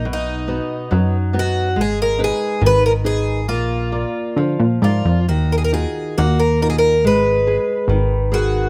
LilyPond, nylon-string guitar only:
\new Staff \with { instrumentName = "Nylon-string guitar" } { \time 2/4 \key aes \dorian \tempo 4 = 70 b,8 <b dis' fis'>8 fis8 <b dis' fis'>8 | aes8 <ees' aes' ces''>8 ees8 <ees' aes' ces''>8 | bes8 <f' bes' d''>8 f8 <f' bes' d''>8 | ees8 <ees' f' ges'>8 bes8 <ees' f' ges'>8 |
aes8 <aes' ces''>8 ees8 <aes' bes' ces''>8 | }